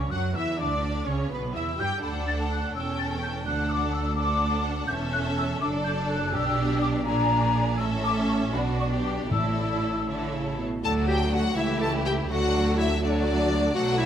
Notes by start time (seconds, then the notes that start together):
Already playing: C#2 C#3 C#4 C#5
0.10 F#2 F#3 F#4 F#5 F#6
0.34 E2 E3 E4 E5 E6
0.58 D2 D3 D4 D5 D6
1.06 C#2 C#3 C#4 C#5 C#6
1.29 B1 B2 B3 B4 B5
1.33 B4
1.55 E2 E3 E4 E5 E6
1.79 G2 G3 G4 G5 G6
2.02 D2 D4 A4 F#5 B5
2.27 A6
2.51 F#6
2.74 E1 E2 C#4 A4 G5 E6
2.99 A6
3.22 G6
3.45 D2 D4 A4 F#5 F#6
3.70 D6
3.91 E6
4.15 D4 A4 F#5 D6
4.87 E1 E2 C#4 E5 G6
4.91 A4
5.12 F#6
5.37 E6
5.60 F#1 F#2 D4 A4 D5 D6
5.84 G6
6.10 F#6
6.33 B1 B2 D4 G4 D5 E6
6.81 D6
7.05 A#1 A#2 D4 G#4 D5 A#5
7.78 A1 A2 C#4 A4 E5 E6
8.04 D6
8.28 C#6
8.54 B1 B2 D4 F#4 D5 B5
8.80 C#6
8.92 G4
9.05 D6
9.31 A1 A2 E4 A4 D5 E6
10.08 D3 E4 A4 C#5
10.34 C#3
10.59 B2
10.84 D2 F#3 A3 D4 F#4 A4 A5
11.08 G4 G5
11.33 A3 F#4 F#5
11.57 C#2 E3 A3 E4 G4 E5
11.81 A4 A5
12.05 A3 G4 G5
12.29 D2 F#3 A3 D4 F#4 F#5
12.77 A3 E4 F#4 E5
13.02 F#3 A3 D4 F#4 D5
13.11 C#5
13.17 D5
13.51 A3 F#4
13.73 B1 B2 F#3 A3 D4 F#4 F#5
13.98 E4 E5